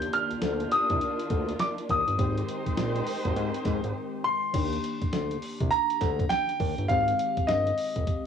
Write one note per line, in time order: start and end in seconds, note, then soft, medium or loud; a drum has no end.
0.00 2.14 D#3 medium
0.00 2.16 D#3 medium
0.00 2.14 A#3 medium
0.00 2.16 A#3 medium
0.00 2.15 D4 medium
0.00 2.16 D4 medium
0.00 2.16 F4 medium
0.00 2.15 G4 medium
0.00 0.14 G6 loud
0.00 closed hi-hat medium
0.13 0.68 F6 medium
0.13 closed hi-hat medium
0.31 0.36 D2 medium
0.31 closed hi-hat medium
0.42 0.66 D2 medium
0.42 snare loud
0.42 closed hi-hat medium
0.60 closed hi-hat medium
0.72 1.63 D#6 loud
0.72 closed hi-hat medium
0.90 0.99 C2 medium
0.90 kick medium
0.90 closed hi-hat soft
1.01 closed hi-hat medium
1.19 closed hi-hat medium
1.30 1.55 D2 medium
1.30 kick medium
1.30 closed hi-hat medium
1.49 closed hi-hat medium
1.59 1.67 D6 medium
1.59 snare loud
1.59 closed hi-hat medium
1.78 closed hi-hat medium
1.89 2.05 D#2 loud
1.89 3.92 D#6 medium
1.89 kick medium
1.89 closed hi-hat medium
2.08 2.17 G1 medium
2.08 closed hi-hat soft
2.18 2.43 G#1 loud
2.18 4.50 D#3 medium
2.18 4.50 G#3 medium
2.18 4.52 G#3 medium
2.18 4.50 C4 medium
2.18 4.52 D#4 medium
2.18 4.52 G4 medium
2.18 4.51 G4 medium
2.18 4.52 A#4 medium
2.18 4.52 C5 medium
2.18 kick loud
2.18 closed hi-hat medium
2.38 closed hi-hat medium
2.48 closed hi-hat medium
2.66 2.71 A#1 soft
2.66 kick medium
2.66 closed hi-hat medium
2.77 3.02 A#1 medium
2.77 snare loud
2.77 closed hi-hat medium
2.96 closed hi-hat medium
3.07 open hi-hat medium
3.25 3.34 G#1 loud
3.25 kick medium
3.25 closed hi-hat soft
3.36 3.51 G#2 loud
3.36 closed hi-hat medium
3.54 closed hi-hat medium
3.65 3.81 G#2 medium
3.65 kick medium
3.65 snare medium
3.65 closed hi-hat medium
3.84 3.93 G#1 medium
3.84 closed hi-hat medium
4.24 5.68 C6 loud
4.53 4.78 D#2 medium
4.53 6.85 D#3 medium
4.53 6.85 A#3 medium
4.53 6.86 D4 medium
4.53 6.86 G4 medium
4.53 kick loud
4.53 closed hi-hat medium
4.53 crash medium
4.73 closed hi-hat medium
4.84 closed hi-hat medium
5.02 5.06 D2 soft
5.02 kick medium
5.02 closed hi-hat medium
5.13 5.37 D2 medium
5.13 snare loud
5.13 closed hi-hat medium
5.31 closed hi-hat medium
5.42 open hi-hat medium
5.60 5.70 C2 loud
5.60 kick medium
5.60 closed hi-hat medium
5.71 6.32 A#5 loud
5.71 closed hi-hat medium
5.90 closed hi-hat medium
6.01 6.25 D2 medium
6.01 kick medium
6.01 snare medium
6.01 closed hi-hat medium
6.19 kick loud
6.19 closed hi-hat soft
6.29 6.85 G5 loud
6.29 snare loud
6.29 closed hi-hat medium
6.49 closed hi-hat soft
6.60 6.75 D#2 loud
6.60 kick medium
6.60 open hi-hat medium
6.78 6.87 G1 medium
6.78 closed hi-hat soft
6.88 7.14 G#1 loud
6.88 8.27 D#3 medium
6.88 8.27 G#3 medium
6.88 8.27 C4 medium
6.88 8.27 G4 medium
6.88 7.50 F5 loud
6.88 kick loud
6.88 closed hi-hat medium
7.08 closed hi-hat medium
7.19 closed hi-hat medium
7.37 7.42 G1 medium
7.37 kick medium
7.37 closed hi-hat medium
7.47 7.72 G1 medium
7.47 8.27 D#5 medium
7.47 snare loud
7.47 closed hi-hat medium
7.67 closed hi-hat medium
7.78 open hi-hat medium
7.96 8.05 F1 medium
7.96 kick medium
7.96 closed hi-hat medium
8.07 kick loud
8.07 closed hi-hat medium